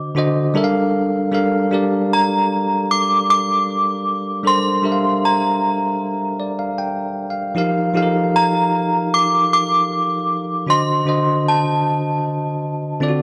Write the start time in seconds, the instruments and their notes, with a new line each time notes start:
Already playing: tine electric piano D3 D4 F#4 C5 D#5, synth bell D6
0.15 tine electric piano D3 D4 F#4 C5 D#5
0.54 tine electric piano G3 D4 A4 A#4 E5
0.64 tine electric piano F5
1.31 tine electric piano G3 D4 A4 A#4 F5
1.71 tine electric piano G3 D4 G4 A#4 D5
2.13 synth bell A#5
2.91 synth bell D6
3.30 synth bell D6
4.43 tine electric piano G3 D4 A4 A#4 C5, synth bell C6
4.82 tine electric piano G3 D4 G4 A#4 E5
4.92 tine electric piano F5
5.25 synth bell A#5
6.40 tine electric piano D5
6.59 tine electric piano F5
6.78 tine electric piano G5
7.30 tine electric piano F5
7.55 tine electric piano F3 D#4 G4 A#4 F5
7.94 tine electric piano F3 D#4 G4 A4 F5
8.02 tine electric piano A#4
8.36 synth bell A#5
9.14 synth bell D6
9.53 synth bell D6
10.66 tine electric piano D3 D4 F#4 C5 D#5, synth bell C6
11.05 tine electric piano D3 D4 F#4 C5 D#5
11.48 synth bell A5
13.00 tine electric piano D3 C4 F4 A4 D5
13.08 tine electric piano F#4